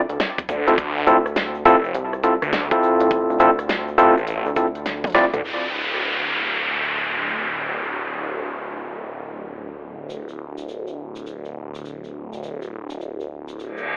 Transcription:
0.09 0.18 D2 medium
0.09 closed hi-hat soft
0.09 shaker soft
0.20 snare loud
0.20 closed hi-hat medium
0.20 shaker soft
0.38 kick loud
0.38 closed hi-hat medium
0.38 shaker soft
0.49 0.76 D2 medium
0.49 kick loud
0.49 shaker medium
0.66 0.73 C4 medium
0.66 0.73 E4 medium
0.66 0.73 F4 medium
0.66 0.73 A4 medium
0.66 closed hi-hat medium
0.66 shaker soft
0.77 1.05 D2 medium
0.77 kick loud
0.77 closed hi-hat medium
0.77 shaker soft
0.97 shaker soft
1.07 1.64 D2 loud
1.07 1.17 C4 loud
1.07 1.17 E4 medium
1.07 1.17 F4 medium
1.07 1.17 A4 loud
1.07 closed hi-hat medium
1.07 shaker medium
1.26 cross-stick soft
1.26 shaker soft
1.36 snare loud
1.36 closed hi-hat medium
1.36 shaker medium
1.55 shaker soft
1.65 1.93 F1 loud
1.65 1.75 C4 loud
1.65 1.75 E4 medium
1.65 1.75 F4 medium
1.65 1.75 A4 loud
1.65 closed hi-hat medium
1.65 shaker medium
1.84 shaker soft
1.95 2.39 C2 loud
1.95 closed hi-hat medium
1.95 shaker soft
2.13 cross-stick soft
2.13 shaker soft
2.24 2.33 C4 medium
2.24 2.33 E4 medium
2.24 2.33 F4 medium
2.24 2.33 A4 medium
2.24 kick medium
2.24 closed hi-hat medium
2.24 shaker medium
2.42 2.51 D2 loud
2.42 cross-stick medium
2.42 closed hi-hat soft
2.42 shaker soft
2.53 2.68 D2 loud
2.53 snare loud
2.53 closed hi-hat medium
2.53 shaker soft
2.71 3.38 C4 medium
2.71 3.38 E4 medium
2.71 3.38 F4 medium
2.71 3.38 A4 loud
2.71 kick loud
2.71 closed hi-hat medium
2.71 shaker soft
2.83 shaker medium
3.00 3.27 A1 loud
3.00 closed hi-hat medium
3.00 shaker soft
3.11 kick loud
3.11 closed hi-hat medium
3.11 shaker medium
3.30 3.39 D2 medium
3.30 shaker soft
3.40 3.97 D2 loud
3.40 3.50 C4 medium
3.40 3.50 E4 medium
3.40 3.50 F4 medium
3.40 3.50 A4 medium
3.40 closed hi-hat medium
3.40 shaker medium
3.59 cross-stick soft
3.59 closed hi-hat soft
3.59 shaker soft
3.69 snare loud
3.69 closed hi-hat medium
3.69 shaker soft
3.88 shaker soft
3.98 4.43 A1 loud
3.98 4.14 C4 loud
3.98 4.14 E4 medium
3.98 4.14 F4 medium
3.98 4.14 A4 loud
3.98 closed hi-hat medium
3.98 shaker medium
4.17 shaker soft
4.27 closed hi-hat medium
4.27 shaker soft
4.46 5.31 D2 loud
4.46 shaker soft
4.56 4.66 C4 medium
4.56 4.66 E4 medium
4.56 4.66 F4 medium
4.56 4.66 A4 medium
4.56 kick medium
4.56 closed hi-hat medium
4.56 shaker medium
4.75 closed hi-hat soft
4.75 shaker soft
4.86 snare medium
4.86 closed hi-hat medium
4.86 shaker medium
5.04 kick loud
5.04 closed hi-hat soft
5.04 high tom medium
5.04 shaker soft
5.07 closed hi-hat soft
5.10 closed hi-hat soft
5.12 5.24 C4 medium
5.12 5.24 E4 medium
5.12 5.24 F4 medium
5.12 5.24 D5 loud
5.12 kick loud
5.12 snare medium
5.12 closed hi-hat medium
5.12 shaker medium
5.33 5.42 D2 medium
5.33 closed hi-hat medium
5.33 mid tom medium
5.33 shaker soft
5.44 downlifter medium
10.10 shaker medium
10.28 shaker soft
10.58 shaker medium
10.69 shaker medium
10.87 shaker soft
11.16 shaker medium
11.27 shaker medium
11.45 shaker soft
11.75 shaker medium
11.85 shaker medium
12.04 shaker soft
12.33 shaker medium
12.43 shaker medium
12.62 shaker soft
12.90 shaker medium
13.01 shaker medium
13.20 shaker soft
13.48 shaker medium
13.59 reverse cymbal medium
13.59 shaker medium
13.77 shaker soft

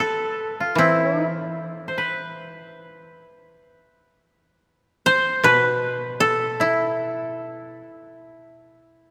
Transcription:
0.00 1.89 A4 medium
0.00 1.91 A4 medium
0.00 0.97 B4 medium
0.00 1.59 B4 medium
0.60 0.84 F4 soft
0.75 3.10 E3 soft
0.75 1.27 C4 medium
0.75 3.05 E4 medium
1.27 3.05 E4 medium
1.88 2.04 C5 soft
1.98 3.75 B4 medium
5.06 5.50 C5 medium
5.06 5.51 C5 medium
5.44 7.79 B2 soft
5.44 7.22 B4 medium
5.44 7.23 B4 medium
6.20 8.11 A4 medium
6.60 9.11 E4 soft
6.60 9.11 E4 medium

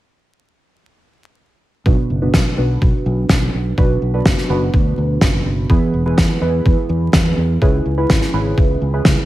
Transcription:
1.86 1.95 B1 medium
1.86 2.19 B2 medium
1.86 2.19 B3 medium
1.86 2.19 D4 medium
1.86 2.19 F#4 medium
1.86 2.19 B4 medium
1.86 kick loud
2.10 2.28 F#1 medium
2.22 2.55 B2 medium
2.22 2.55 B3 medium
2.22 2.55 D4 medium
2.22 2.55 F#4 medium
2.22 2.55 B4 loud
2.34 2.43 B1 medium
2.34 kick loud
2.34 snare loud
2.58 2.77 B1 medium
2.58 3.75 B2 medium
2.58 3.75 B3 medium
2.58 3.75 D4 medium
2.58 3.75 F#4 medium
2.58 3.75 B4 loud
2.82 2.91 B1 medium
2.82 kick loud
3.06 3.24 B1 medium
3.29 3.48 B1 medium
3.29 kick loud
3.29 snare loud
3.54 3.72 B1 medium
3.78 3.96 B1 medium
3.78 4.11 B2 medium
3.78 4.11 B3 medium
3.78 4.11 D4 medium
3.78 4.11 F#4 medium
3.78 4.11 B4 loud
3.78 kick loud
4.02 4.20 B1 medium
4.14 4.47 B2 medium
4.14 4.47 B3 medium
4.14 4.47 D4 medium
4.14 4.47 F#4 medium
4.14 4.47 B4 loud
4.26 4.35 F#1 loud
4.26 kick loud
4.26 snare loud
4.37 snare soft
4.50 4.68 F#1 loud
4.50 5.67 B2 medium
4.50 5.67 B3 medium
4.50 5.67 D4 medium
4.50 5.67 F#4 medium
4.50 5.67 B4 loud
4.74 4.92 D2 medium
4.74 kick loud
4.98 5.16 D2 medium
5.21 5.40 F#1 medium
5.21 kick loud
5.21 snare loud
5.46 5.64 F#1 medium
5.70 5.79 E2 medium
5.70 6.03 E3 medium
5.70 6.03 B3 medium
5.70 6.03 E4 medium
5.70 6.03 G#4 medium
5.70 6.03 B4 loud
5.70 kick loud
5.94 6.12 E1 medium
6.06 6.39 E3 medium
6.06 6.39 B3 medium
6.06 6.39 E4 medium
6.06 6.39 G#4 medium
6.06 6.39 B4 loud
6.18 6.27 E2 medium
6.18 kick loud
6.18 snare loud
6.41 6.60 E2 medium
6.41 7.59 E3 loud
6.41 7.59 B3 medium
6.41 7.59 E4 medium
6.41 7.59 G#4 medium
6.41 7.59 B4 loud
6.66 6.75 E2 medium
6.66 kick loud
6.89 7.08 E2 loud
7.13 7.32 E2 medium
7.13 kick loud
7.13 snare loud
7.37 7.56 E2 medium
7.62 7.80 C#2 medium
7.62 7.95 C#3 medium
7.62 7.95 C#4 medium
7.62 7.95 E4 medium
7.62 7.95 G#4 medium
7.62 7.95 B4 loud
7.62 kick loud
7.85 8.04 C#2 medium
7.98 8.31 C#3 medium
7.98 8.31 C#4 medium
7.98 8.31 E4 medium
7.98 8.31 G#4 medium
7.98 8.31 B4 loud
8.10 8.19 G#1 medium
8.10 kick loud
8.10 snare loud
8.22 snare soft
8.33 8.52 G#1 medium
8.33 8.91 C#3 loud
8.33 8.91 C#4 medium
8.33 8.91 E4 medium
8.33 8.91 G#4 medium
8.33 8.91 B4 loud
8.58 8.76 C#2 medium
8.58 kick loud
8.82 9.00 C#2 medium
8.94 9.25 C#3 medium
8.94 9.25 C#4 medium
8.94 9.25 E4 medium
8.94 9.25 G#4 medium
8.94 9.25 B4 medium
9.05 9.15 C#2 medium
9.05 kick loud
9.05 snare loud

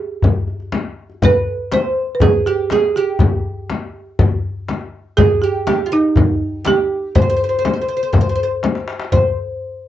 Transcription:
0.00 0.44 G4 medium
0.22 darbuka dum medium
0.22 frame drum medium
0.36 darbuka ka soft
0.48 darbuka ka soft
0.60 darbuka ka soft
0.72 darbuka tek medium
0.72 frame drum medium
1.10 darbuka ka soft
1.22 1.72 B4 medium
1.22 1.74 B4 medium
1.22 darbuka dum medium
1.22 frame drum medium
1.72 2.21 C5 medium
1.72 2.17 C5 medium
1.72 darbuka tek medium
1.72 frame drum medium
2.15 2.21 B4 medium
2.20 2.47 G#4 medium
2.20 darbuka dum medium
2.20 frame drum medium
2.33 darbuka ka soft
2.46 2.71 G4 medium
2.46 2.72 G4 medium
2.70 2.96 G#4 medium
2.70 2.97 G#4 medium
2.70 darbuka tek medium
2.70 frame drum medium
2.82 darbuka ka soft
2.96 4.40 G4 medium
3.19 darbuka dum medium
3.19 frame drum medium
3.70 darbuka tek medium
3.70 frame drum medium
4.19 darbuka dum medium
4.19 frame drum medium
4.32 darbuka ka soft
4.68 darbuka tek medium
4.68 frame drum medium
4.81 darbuka ka soft
5.17 5.42 G#4 medium
5.17 frame drum medium
5.17 darbuka dum medium
5.42 5.65 G4 medium
5.42 5.66 G4 medium
5.67 5.85 G4 medium
5.67 5.92 G4 medium
5.67 darbuka tek medium
5.67 frame drum medium
5.86 5.91 F4 soft
5.92 6.68 D#4 medium
6.16 darbuka dum medium
6.16 frame drum medium
6.29 darbuka ka soft
6.65 7.15 G4 medium
6.65 7.17 G4 medium
6.65 darbuka tek medium
6.65 frame drum medium
6.78 darbuka ka soft
7.15 7.21 C5 medium
7.15 8.59 C5 medium
7.15 frame drum medium
7.15 darbuka dum medium
7.22 7.28 C5 medium
7.30 7.35 C5 medium
7.37 7.43 C5 soft
7.41 7.48 C5 soft
7.41 darbuka ka soft
7.49 7.57 C5 soft
7.53 darbuka ka soft
7.59 7.64 C5 medium
7.65 7.72 C5 soft
7.65 darbuka tek medium
7.65 frame drum medium
7.74 7.80 C5 soft
7.74 darbuka ka soft
7.81 7.87 C5 soft
7.88 7.95 C5 soft
7.97 8.02 C5 soft
8.03 8.10 C5 medium
8.13 8.19 C5 soft
8.13 darbuka dum medium
8.13 frame drum medium
8.21 8.27 C5 medium
8.29 8.34 C5 soft
8.36 8.42 C5 medium
8.43 8.49 C5 soft
8.63 darbuka tek medium
8.63 frame drum medium
8.75 darbuka ka medium
8.88 darbuka tek medium
9.00 darbuka ka medium
9.12 9.35 C5 medium
9.12 darbuka dum medium
9.12 frame drum medium

